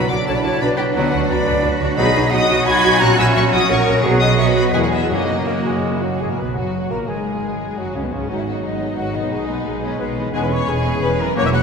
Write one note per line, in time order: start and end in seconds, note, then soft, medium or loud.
0.00 0.98 B2 medium
0.00 1.94 F#3 medium
0.00 0.27 D4 medium
0.00 1.98 D4 medium
0.00 0.44 F#4 medium
0.00 0.10 B5 loud
0.10 0.17 B1 medium
0.10 2.14 F#3 medium
0.10 0.17 D4 medium
0.10 0.17 F#4 medium
0.10 0.27 D5 medium
0.10 0.16 F#5 loud
0.10 0.28 D6 loud
0.26 0.35 B1 medium
0.26 0.78 B3 medium
0.26 0.35 D4 medium
0.26 0.62 E4 medium
0.26 0.35 F#4 medium
0.26 0.36 A4 loud
0.26 0.32 C#5 loud
0.26 0.36 A5 medium
0.35 0.45 B4 medium
0.35 0.39 D5 medium
0.35 0.45 B5 medium
0.43 0.51 B1 medium
0.43 0.51 D4 medium
0.43 0.52 F#4 medium
0.43 1.64 F#4 medium
0.43 0.62 A4 medium
0.43 0.63 C#5 loud
0.43 0.62 A5 loud
0.60 0.68 B1 medium
0.60 0.69 D4 medium
0.60 1.29 D4 medium
0.60 1.64 D4 medium
0.60 0.69 F#4 medium
0.60 0.78 B4 loud
0.60 0.79 D5 loud
0.60 0.68 B5 loud
0.77 0.85 B1 medium
0.77 1.12 B3 medium
0.77 0.86 D4 medium
0.77 0.86 F#4 medium
0.77 0.84 G4 medium
0.77 0.94 B4 medium
0.77 0.84 G5 medium
0.94 1.03 D2 medium
0.94 1.08 B2 medium
0.94 1.99 D3 medium
0.94 1.08 F#3 medium
0.94 1.08 B3 medium
0.94 1.03 D4 medium
0.94 1.09 D4 medium
0.94 1.28 F#4 medium
0.94 1.03 F#4 medium
0.94 1.28 B4 medium
0.94 1.29 F#5 loud
1.13 1.21 D2 medium
1.13 2.31 B3 medium
1.13 1.21 D4 medium
1.13 1.21 F#4 medium
1.27 1.37 D2 loud
1.27 1.80 D4 medium
1.27 1.79 B4 medium
1.27 1.68 D5 loud
1.27 1.81 B5 loud
1.32 1.38 D4 medium
1.32 1.38 F#4 medium
1.47 1.54 D2 medium
1.47 1.54 D4 medium
1.47 1.54 F#4 medium
1.47 3.03 B4 medium
1.64 1.71 D2 medium
1.64 1.71 D4 medium
1.64 1.71 F#4 medium
1.64 1.99 F#4 loud
1.64 2.48 F#4 medium
1.81 1.88 D2 medium
1.81 2.00 D4 medium
1.81 1.89 D4 medium
1.81 1.88 F#4 medium
1.96 2.05 B1 loud
1.96 2.10 B2 loud
1.96 2.46 B2 loud
1.96 3.03 B2 medium
1.96 2.30 F#3 medium
1.96 2.10 F#3 medium
1.96 2.10 B3 loud
1.96 2.30 D#4 loud
1.96 2.10 D#4 medium
1.96 2.06 D#4 medium
1.96 2.06 F#4 medium
1.96 2.32 G#4 loud
1.96 2.29 B4 loud
1.96 2.32 D#5 loud
1.96 2.30 B5 loud
2.15 2.22 B1 medium
2.15 4.20 F#3 medium
2.15 2.23 D#4 medium
2.15 2.23 F#4 medium
2.30 2.39 B1 loud
2.30 3.00 F#3 loud
2.30 2.83 B3 medium
2.30 3.03 D#4 medium
2.30 2.40 D#4 medium
2.30 3.70 F#4 loud
2.30 2.40 F#4 medium
2.30 2.65 D#5 loud
2.30 2.67 F#5 loud
2.30 2.66 D#6 loud
2.50 2.57 B1 medium
2.50 2.57 D#4 medium
2.50 3.51 F#4 medium
2.50 2.57 F#4 medium
2.66 2.74 B1 medium
2.66 3.03 D#4 medium
2.66 2.74 D#4 medium
2.66 2.74 F#4 medium
2.66 3.00 G#5 loud
2.66 3.01 B5 loud
2.66 3.01 G#6 loud
2.84 2.91 B1 medium
2.84 3.03 B3 medium
2.84 2.91 D#4 medium
2.84 2.91 F#4 medium
3.00 3.08 A#1 loud
3.00 3.13 A#2 medium
3.00 4.05 A#2 medium
3.00 3.68 F#3 loud
3.00 3.13 F#3 medium
3.00 3.13 C#4 medium
3.00 3.69 C#4 loud
3.00 3.09 C#4 medium
3.00 3.13 F#4 medium
3.00 3.09 F#4 medium
3.00 3.18 F#5 loud
3.00 3.17 A#5 loud
3.00 3.18 F#6 loud
3.18 3.26 A#1 loud
3.18 3.86 A#3 medium
3.18 3.26 C#4 medium
3.18 3.26 F#4 medium
3.18 3.35 E5 loud
3.18 3.34 G#5 loud
3.18 3.26 E6 loud
3.34 3.43 A#1 loud
3.34 3.68 C#4 medium
3.34 3.43 C#4 medium
3.34 3.43 F#4 medium
3.34 3.53 C#5 loud
3.34 3.40 E5 loud
3.34 3.43 C#6 loud
3.52 3.60 A#1 medium
3.52 3.60 C#4 medium
3.52 4.76 F#4 medium
3.52 3.60 F#4 medium
3.52 3.60 D#5 loud
3.52 3.68 F#5 loud
3.52 3.70 D#6 loud
3.69 3.77 A#1 medium
3.69 4.03 F#3 medium
3.69 4.02 C#4 medium
3.69 4.05 C#4 medium
3.69 3.77 C#4 medium
3.69 3.76 F#4 medium
3.69 4.04 A#4 loud
3.69 4.04 C#5 medium
3.69 4.03 F#5 medium
3.69 4.05 C#6 loud
3.87 3.94 A#1 medium
3.87 4.06 A#3 medium
3.87 3.94 C#4 medium
3.87 3.94 F#4 medium
4.03 4.71 B1 medium
4.03 4.15 B2 loud
4.03 4.52 B2 loud
4.03 4.76 B2 medium
4.03 4.15 F#3 medium
4.03 4.75 F#3 loud
4.03 4.70 B3 loud
4.03 4.71 B3 medium
4.03 4.17 B3 medium
4.03 4.71 F#4 medium
4.03 4.16 F#4 medium
4.03 4.38 G#4 loud
4.19 4.76 F#3 medium
4.19 4.36 D#5 loud
4.19 4.26 F#5 loud
4.19 4.37 D#6 loud
4.37 5.13 B3 medium
4.37 4.74 F#4 loud
4.37 4.47 C#5 loud
4.37 4.48 E5 loud
4.37 4.47 C#6 loud
4.46 4.55 B4 medium
4.46 4.55 D#5 medium
4.46 4.54 B5 loud
4.55 4.74 B4 medium
4.55 4.93 B4 medium
4.55 4.73 D#5 loud
4.55 4.63 B5 loud
4.72 5.11 E2 medium
4.72 5.13 E2 loud
4.72 4.86 B2 medium
4.72 4.87 G#3 medium
4.72 5.11 G#3 medium
4.72 4.87 B3 medium
4.72 5.11 B3 medium
4.72 4.88 E4 medium
4.72 5.11 G#4 medium
4.72 4.79 G#4 loud
4.72 4.82 B4 loud
4.72 4.78 G#5 loud
4.80 4.93 F#4 medium
4.80 4.91 A#4 medium
4.80 4.87 F#5 medium
4.92 4.99 E4 medium
4.92 5.08 G#4 medium
4.92 5.13 G#4 medium
4.92 5.13 B4 medium
4.92 5.11 E5 loud
5.09 6.02 F#2 medium
5.09 5.63 F#2 medium
5.09 6.24 F#2 medium
5.09 5.23 C#3 medium
5.09 5.23 F#3 medium
5.09 5.46 F#3 medium
5.09 5.47 A#3 medium
5.09 5.48 A#3 medium
5.09 5.25 A#3 medium
5.09 5.48 D#4 loud
5.09 5.46 F#4 medium
5.09 5.24 F#4 medium
5.09 5.47 F#4 medium
5.09 6.04 A#4 medium
5.09 5.48 D#5 loud
5.30 6.24 C#3 medium
5.47 6.03 F#3 medium
5.47 5.56 A#3 medium
5.47 6.03 A#3 medium
5.47 5.86 C#4 medium
5.47 5.84 F#4 medium
5.47 6.03 F#4 medium
5.47 5.85 C#5 medium
5.66 6.05 G#3 medium
5.66 6.24 A#4 medium
5.85 5.94 F#4 medium
5.85 9.33 F#4 medium
5.85 5.89 F#5 medium
5.93 6.03 E4 medium
5.93 5.99 E5 medium
6.01 7.19 B2 soft
6.01 6.20 F#3 medium
6.01 6.08 F#3 soft
6.01 6.21 F#4 medium
6.01 6.22 F#5 medium
6.09 7.12 F#3 soft
6.14 7.16 D#4 soft
6.18 6.26 G#2 medium
6.18 6.30 G#3 medium
6.18 6.25 G#3 medium
6.18 6.30 G#4 medium
6.18 6.32 G#4 medium
6.18 7.21 B4 soft
6.18 6.31 G#5 medium
6.22 6.26 G#1 medium
6.22 6.31 G#3 medium
6.30 6.40 A#2 soft
6.30 6.39 A#3 medium
6.30 6.40 A#3 soft
6.30 6.39 A#3 soft
6.30 6.40 A#3 soft
6.30 6.39 A#4 medium
6.30 6.42 A#4 soft
6.30 6.40 A#4 soft
6.30 6.36 A#5 soft
6.37 6.58 B1 medium
6.37 6.58 B2 medium
6.37 6.57 B3 soft
6.37 6.57 B3 medium
6.37 6.48 B3 medium
6.37 6.56 B4 medium
6.37 6.57 B4 soft
6.37 6.57 B4 medium
6.37 6.55 B5 medium
6.54 6.92 F#2 medium
6.54 6.91 F#3 medium
6.54 6.92 F#3 medium
6.54 6.91 F#3 medium
6.54 6.90 F#3 medium
6.54 6.90 F#4 medium
6.54 6.93 F#4 soft
6.54 6.92 F#5 medium
6.58 6.92 F#1 medium
6.90 7.09 A#1 medium
6.90 7.09 A#2 medium
6.90 7.08 A#3 medium
6.90 7.09 A#3 medium
6.90 7.08 A#4 medium
6.90 6.98 A#4 medium
6.90 7.10 A#4 medium
6.90 7.09 A#5 medium
7.07 7.77 G#1 soft
7.07 7.77 G#2 soft
7.07 8.22 D#3 soft
7.07 7.76 G#3 medium
7.07 7.78 G#3 medium
7.07 7.79 G#3 medium
7.07 7.76 G#4 medium
7.07 7.77 G#4 medium
7.07 7.77 G#4 soft
7.07 7.54 G#5 soft
7.13 8.14 F#3 soft
7.18 8.19 D#4 soft
7.22 8.23 B4 soft
7.76 7.95 F#1 medium
7.76 7.95 F#2 medium
7.76 7.95 F#3 medium
7.76 7.94 F#3 medium
7.76 7.86 F#3 medium
7.76 7.87 F#3 soft
7.76 7.95 F#4 medium
7.76 7.96 F#4 medium
7.76 7.94 F#5 medium
7.93 8.04 C#2 medium
7.93 7.99 C#3 medium
7.93 8.04 C#3 medium
7.93 8.00 C#3 medium
7.93 8.03 C#4 medium
7.93 8.02 C#4 medium
7.93 8.03 C#5 medium
8.02 8.12 B2 soft
8.02 8.11 B2 soft
8.02 8.13 B2 soft
8.02 8.06 B3 soft
8.02 8.07 B3 soft
8.02 8.13 B3 soft
8.02 8.13 B4 soft
8.11 8.29 C#2 medium
8.11 9.24 G#2 soft
8.11 8.29 C#3 medium
8.11 8.30 C#3 medium
8.11 8.18 C#4 medium
8.11 8.29 C#4 medium
8.11 8.30 C#5 medium
8.15 9.26 F#3 soft
8.20 9.22 D#4 soft
8.24 9.26 B4 soft
8.29 8.60 G#1 medium
8.29 8.59 G#2 medium
8.29 10.31 D#3 medium
8.29 9.34 F#3 medium
8.29 9.28 F#3 soft
8.29 8.46 G#3 soft
8.29 10.30 B3 medium
8.29 10.31 B3 medium
8.29 10.30 D#4 soft
8.29 8.39 D#4 medium
8.29 8.46 F#4 soft
8.29 8.36 D#5 medium
8.29 8.45 F#5 soft
8.36 8.47 E4 medium
8.36 8.44 E5 medium
8.44 8.64 B3 soft
8.44 8.63 F#4 medium
8.44 8.64 G#4 soft
8.44 8.64 D#5 soft
8.44 8.50 F#5 medium
8.62 8.94 G#1 medium
8.62 8.94 G#2 medium
8.62 8.81 G#3 soft
8.62 8.97 D#4 medium
8.62 8.81 F#4 soft
8.62 8.96 D#5 medium
8.62 8.81 F#5 soft
8.80 8.98 B3 soft
8.80 8.98 G#4 medium
8.80 8.97 D#5 soft
8.97 9.27 G#1 medium
8.97 9.28 G#2 medium
8.97 9.14 G#3 soft
8.97 9.14 F#4 soft
8.97 9.15 F#4 medium
8.97 9.17 F#5 medium
8.97 9.13 F#5 soft
9.14 10.27 B2 medium
9.14 9.32 B3 soft
9.14 9.84 D#4 medium
9.14 9.31 G#4 soft
9.14 9.32 D#5 soft
9.14 9.84 D#5 medium
9.18 10.20 G#3 soft
9.23 10.31 D#4 soft
9.27 9.62 B1 medium
9.27 10.29 B4 soft
9.32 9.62 B2 medium
9.32 11.37 G#3 medium
9.32 10.34 G#3 medium
9.32 9.48 G#3 medium
9.32 9.48 G#4 soft
9.32 9.48 B4 medium
9.49 9.66 B3 soft
9.49 9.66 B4 medium
9.49 9.66 D#5 soft
9.65 9.96 B1 medium
9.65 9.96 B2 medium
9.65 9.84 G#3 medium
9.65 9.84 G#4 medium
9.65 9.83 B4 medium
9.83 10.01 B3 medium
9.83 10.00 C#4 medium
9.83 10.00 B4 medium
9.83 9.99 C#5 medium
9.83 10.00 D#5 medium
10.00 10.30 B1 medium
10.00 10.30 B2 medium
10.00 10.17 G#3 medium
10.00 10.17 B3 medium
10.00 10.17 G#4 medium
10.00 10.06 B4 medium
10.00 10.16 B4 medium
10.17 11.18 E3 medium
10.17 10.35 B3 medium
10.17 10.35 B4 medium
10.17 10.34 D#5 medium
10.21 11.32 G#3 medium
10.26 11.27 C#4 medium
10.30 10.64 E1 medium
10.30 11.63 E3 medium
10.30 11.34 B3 medium
10.30 11.63 C#4 medium
10.30 10.42 G#4 loud
10.30 11.36 B4 medium
10.34 10.65 E2 medium
10.34 10.46 G#3 medium
10.34 10.46 B3 medium
10.34 10.50 C#4 medium
10.34 10.50 G#4 medium
10.34 10.50 B4 medium
10.34 10.45 G#5 medium
10.43 10.47 B4 medium
10.43 10.54 B5 medium
10.51 10.68 B3 medium
10.51 10.68 B4 medium
10.51 10.68 C#5 medium
10.51 10.69 C#5 loud
10.51 10.71 C#6 medium
10.68 10.98 E1 medium
10.68 10.99 E2 medium
10.68 10.85 C#4 medium
10.68 10.85 G#4 medium
10.68 11.03 G#4 loud
10.68 10.85 B4 medium
10.68 11.02 G#5 medium
10.84 11.02 B3 medium
10.84 11.02 B4 medium
10.84 11.02 C#5 medium
11.01 11.32 E1 medium
11.01 11.33 E2 medium
11.01 11.18 C#4 medium
11.01 11.18 G#4 medium
11.01 11.18 B4 medium
11.01 11.20 B4 loud
11.01 11.08 B5 loud
11.18 11.63 E3 medium
11.18 11.37 B3 medium
11.18 11.37 A#4 loud
11.18 11.37 B4 medium
11.18 11.36 C#5 medium
11.18 11.36 A#5 medium
11.24 11.63 F#3 medium
11.28 11.63 C#4 medium
11.33 11.63 E1 medium
11.33 11.63 F#3 medium
11.33 11.49 F#3 medium
11.33 11.48 A#3 medium
11.33 11.53 C#4 medium
11.33 11.53 F#4 medium
11.33 11.63 A#4 medium
11.33 11.52 A#4 medium
11.33 11.45 C#6 loud
11.37 11.63 E2 loud
11.37 11.63 A#3 medium
11.37 11.45 C#5 loud
11.46 11.49 E5 medium
11.46 11.50 E6 medium
11.53 11.63 A#3 medium
11.53 11.63 E4 medium
11.53 11.63 C#5 medium
11.53 11.61 F#5 loud
11.53 11.63 F#6 loud